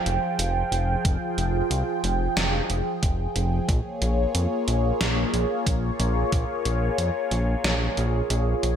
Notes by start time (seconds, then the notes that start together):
Already playing: F3 F4 G#4 G5
0.06 F1, closed hi-hat
0.39 F1, closed hi-hat
0.72 F1, closed hi-hat
1.05 F1, kick, closed hi-hat
1.38 F1, closed hi-hat
1.71 C2, closed hi-hat
2.04 F1, closed hi-hat
2.37 F1, snare, closed hi-hat
2.70 F1, closed hi-hat
3.03 F1, kick, closed hi-hat
3.36 F1, closed hi-hat
3.69 A#1 A#3 F4 C#5, kick, closed hi-hat
4.02 A#1, closed hi-hat
4.35 F2, closed hi-hat
4.68 A#1, closed hi-hat
5.01 A#1, snare, closed hi-hat
5.34 A#1, closed hi-hat
5.66 A#1, kick, closed hi-hat
6.00 A#1, closed hi-hat
6.32 A#1, kick, closed hi-hat
6.65 A#1, closed hi-hat
6.98 F2, closed hi-hat
7.31 A#1, closed hi-hat
7.64 A#1, snare, closed hi-hat
7.97 A#1, closed hi-hat
8.30 A#1, closed hi-hat
8.63 A#1, closed hi-hat